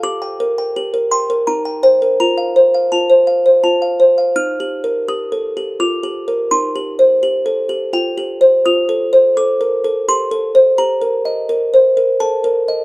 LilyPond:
\new Staff \with { instrumentName = "Music box" } { \time 3/4 \key c \dorian \tempo 4 = 84 << { d'''4. c'''8 bes''8 g''8 | bes''4 a''4 a''4 | f'''4 ees'''4 d'''4 | c'''2 g''4 |
ees'''4 d'''4 c'''4 | bes''2 a''8 r8 | } \\ { g'16 g''16 bes'16 g''16 g'16 bes'16 g''16 bes'16 ees'16 g''16 c''16 bes'16 | f'16 f''16 c''16 f''16 f'16 c''16 f''16 c''16 f'16 f''16 c''16 f''16 | \tuplet 3/2 { ees'8 g'8 bes'8 g'8 a'8 g'8 f'8 g'8 bes'8 } | \tuplet 3/2 { ees'8 g'8 c''8 g'8 a'8 g'8 f'8 g'8 c''8 } |
\tuplet 3/2 { f'8 a'8 c''8 a'8 bes'8 a'8 g'8 a'8 c''8 } | \tuplet 3/2 { g'8 bes'8 ees''8 bes'8 c''8 bes'8 a'8 bes'8 ees''8 } | } >> }